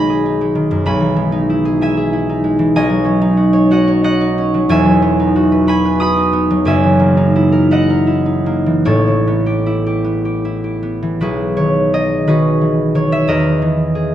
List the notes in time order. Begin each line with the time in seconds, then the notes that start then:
Already playing: B1 D#3 G#3 D#4 B4 D#5 F#5 G#5 B5 D#6
0.10 G#4
0.26 D#4
0.41 G#3
0.55 D#3
0.71 F#2
0.86 B1 G#5 B5
1.00 E3
1.16 G#3
1.32 D#4
1.50 E4
1.65 G#4
1.81 E4 E5 G#5
1.97 G#4
2.13 E4
2.29 D#4
2.44 G#3
2.59 E3
2.76 B1 D#5 G#5
2.89 F#3
3.05 C#4
3.22 D#4
3.37 F#4
3.53 C#5
3.71 F#4 D#5 F#5
3.87 C#5
4.04 F#4 D#5 F#5
4.21 D#4
4.38 C#4
4.54 F#3
4.69 E1 E2 E5 G#5
4.85 F#3
5.02 B3
5.20 D#4
5.36 F#4
5.52 B4
5.67 F#4 G#5 B5
5.85 B4
6.00 F#4 B5 D#6
6.17 D#4
6.33 B3
6.50 F#3
6.65 F#1 F#2 E5 G#5
6.83 E3
7.00 A#3
7.17 D#4
7.36 E4
7.52 A#4
7.71 E4 D#5 F#5
7.90 A#4
8.07 E4
8.26 D#4
8.46 A#3
8.66 E3
8.85 A1 A2 A4 C#5
9.07 E3
9.27 B3
9.46 G4
9.66 E4
9.86 G4
10.04 B3
10.25 G4
10.45 E4
10.64 G4
10.83 B3
11.02 E3
11.21 B1 F#4 G#4 B4
11.57 D#3 C#5
11.93 G#4 D#5
12.27 D#3 F#4 G#4 B4
12.61 E3
12.95 D#3 C#5
13.12 E5
13.27 E2 A#4 B4 D#5
13.62 E3
13.95 G#4